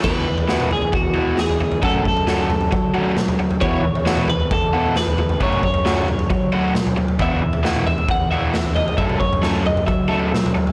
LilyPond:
<<
  \new Staff \with { instrumentName = "Clean electric guitar" } { \time 4/4 \key fis \dorian \tempo 4 = 134 b'4. gis'8 fis'4 gis'4 | a'8 a'2 r4. | cis''4. b'8 a'4 b'4 | cis''8 cis''2 r4. |
e''4. e''8 fis''8 e''4 dis''8 | e''8 cis''4 dis''8 e''8 e''4 r8 | }
  \new Staff \with { instrumentName = "Overdriven electric guitar" } { \time 4/4 \key fis \dorian <e b e' fis'>8 r8 <e b e' fis'>8 r4 <e b e' fis'>8 r4 | <a cis' fis'>8 r8 <a cis' fis'>8 r4 <a cis' fis'>8 r4 | <e b e' fis'>8 r8 <e b e' fis'>8 r4 <e b e' fis'>8 r4 | <fis a cis' fis'>8 r8 <fis a cis' fis'>8 r4 <fis a cis' fis'>8 r4 |
<e b e' fis'>8 r8 <e b e' fis'>8 r4 <e b e' fis'>8 r4 | <fis a cis' a'>8 r8 <fis a cis' a'>8 r4 <fis a cis' a'>8 r4 | }
  \new Staff \with { instrumentName = "Fingered electric bass" } { \clef bass \time 4/4 \key fis \dorian e,2 e,2 | fis,8 fis,4. fis2 | e,2 e,2 | fis,8 fis,4. fis2 |
e,2 e,2 | fis,8 fis,4. fis2 | }
  \new DrumStaff \with { instrumentName = "Drums" } \drummode { \time 4/4 <cymc bd tomfh>8. tomfh16 sn16 toml16 tomfh16 tomfh16 <bd tomfh>4 sn16 tomfh16 tomfh16 tomfh16 | <bd tomfh>16 toml16 bd16 tomfh16 <sn tomfh>8 tomfh16 tomfh16 <bd tomfh>4 <sn toml>16 <tomfh toml>16 tomfh16 tomfh16 | <bd tomfh>8. tomfh16 sn16 toml16 tomfh16 tomfh16 <bd tomfh>4 sn16 tomfh16 tomfh16 tomfh16 | <bd tomfh>16 toml16 bd16 tomfh16 <sn tomfh>8 tomfh16 tomfh16 <bd tomfh>4 <sn toml>16 <tomfh toml>16 tomfh16 tomfh16 |
<bd tomfh>8. tomfh16 sn16 toml16 tomfh16 tomfh16 <bd tomfh>4 sn16 tomfh16 tomfh16 tomfh16 | <bd tomfh>16 toml16 bd16 tomfh16 <sn tomfh>8 tomfh16 tomfh16 <bd tomfh>4 <sn toml>16 <tomfh toml>16 tomfh16 tomfh16 | }
>>